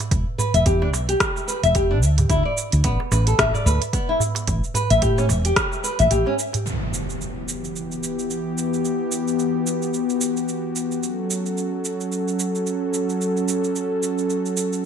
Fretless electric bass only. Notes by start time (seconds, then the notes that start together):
0.12 E1
0.54 E1
0.66 E2
0.93 B1
1.63 E1
2.02 D2
2.30 D2
2.73 D2
2.84 A1
3.12 A1
3.39 A1
3.66 D2
4.48 A1
4.91 A1
5.02 A2
5.30 E1
6.00 A1
6.11 A1